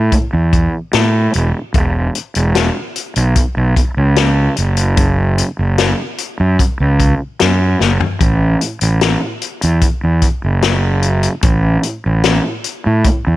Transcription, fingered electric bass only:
0.33 0.66 E2 medium
0.94 1.27 A2 medium
1.35 1.51 E1 medium
1.75 2.08 E1 medium
2.36 2.69 E1 medium
3.16 3.33 B1 medium
3.57 3.73 B1 medium
3.97 4.47 C#2 medium
4.58 5.41 F#1 medium
5.59 5.92 F#1 medium
6.40 6.56 F#2 medium
6.80 7.13 C#2 medium
7.42 7.74 F#2 medium
7.80 7.97 F#1 medium
8.21 8.54 A1 medium
8.82 9.15 A1 medium
9.63 9.79 E2 medium
10.04 10.20 E2 medium
10.44 11.26 F#1 medium
11.43 11.76 A1 medium
12.06 12.38 A1 medium
12.86 13.02 A2 medium
13.27 13.36 E2 medium

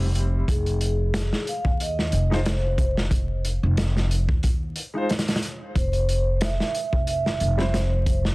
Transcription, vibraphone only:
0.50 1.51 G#4 medium
1.49 1.82 F5 loud
1.82 2.49 D#5 medium
2.47 2.94 C5 medium
5.78 6.45 C5 medium
6.43 7.04 E5 loud
7.09 7.76 E5 loud
7.74 8.22 C5 medium

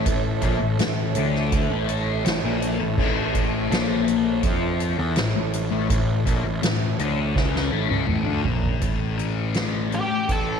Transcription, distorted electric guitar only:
0.07 0.36 A2 medium
0.43 0.60 A#2 medium
0.43 0.60 A#3 loud
0.60 0.79 A2 medium
0.80 1.09 A2 medium
1.17 1.70 D3 medium
1.17 1.70 D4 loud
1.72 2.24 A2 medium
1.72 2.25 A3 medium
2.25 2.43 A2 medium
2.45 2.80 A#2 medium
2.45 2.80 A#3 medium
2.81 2.98 A2 medium
2.99 3.71 A2 loud
2.99 3.73 A3 loud
3.71 4.43 A#2 medium
3.71 4.44 A#3 medium
4.43 4.97 F3 medium
4.43 4.98 F4 loud
4.98 5.15 E3 medium
4.98 5.16 E4 loud
5.18 5.34 A2 medium
5.36 5.65 A2 medium
5.70 5.88 A2 medium
5.70 5.88 A3 loud
5.90 6.19 A2 medium
6.25 6.43 A#2 medium
6.25 6.44 A#3 loud
6.44 6.61 A2 medium
6.62 6.92 A2 medium
7.00 7.35 D3 medium
7.00 7.36 D4 medium
7.35 7.71 C#3 medium
7.35 7.72 C#4 medium
7.71 7.88 A2 medium
7.71 7.90 A3 loud
7.88 8.07 C#3 medium
7.88 8.08 C#4 medium
8.07 8.25 A2 medium
8.07 8.26 A3 medium
8.25 8.43 D3 medium
8.25 8.44 D4 loud
8.43 8.80 A#2 medium
8.43 8.80 A#3 medium
8.81 10.60 A2 medium
9.17 9.88 C#4 medium
9.54 10.60 A3 medium
9.90 10.60 C#4 medium
10.28 10.60 A4 medium

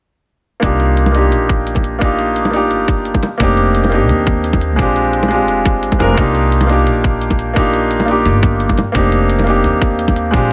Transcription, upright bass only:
0.63 1.32 C2 medium
1.32 2.71 A#1 medium
2.71 3.21 G1 loud
3.40 4.09 F1 medium
4.09 4.79 D#2 medium
4.79 5.48 A#1 medium
5.48 5.83 F1 medium
5.83 5.99 G#1 medium
6.00 6.16 F1 medium
6.18 6.87 C2 medium
6.87 8.27 A#1 medium
8.26 8.76 G1 medium
8.95 9.66 F1 medium
9.64 10.32 D#2 medium
10.34 10.53 A#1 medium

